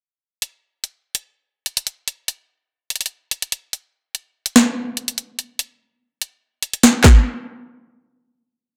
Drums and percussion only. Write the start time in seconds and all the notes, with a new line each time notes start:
0.42 closed hi-hat
0.84 closed hi-hat
1.15 closed hi-hat
1.66 closed hi-hat
1.77 closed hi-hat
1.87 closed hi-hat
2.08 closed hi-hat
2.28 closed hi-hat
2.90 closed hi-hat
2.96 closed hi-hat
3.01 closed hi-hat
3.06 closed hi-hat
3.31 closed hi-hat
3.42 closed hi-hat
3.52 closed hi-hat
3.73 closed hi-hat
4.15 closed hi-hat
4.46 closed hi-hat
4.56 snare
4.97 closed hi-hat
5.08 closed hi-hat
5.18 closed hi-hat
5.39 closed hi-hat
5.59 closed hi-hat
6.22 closed hi-hat
6.63 closed hi-hat
6.74 closed hi-hat
6.83 snare, closed hi-hat
7.04 kick, snare, clap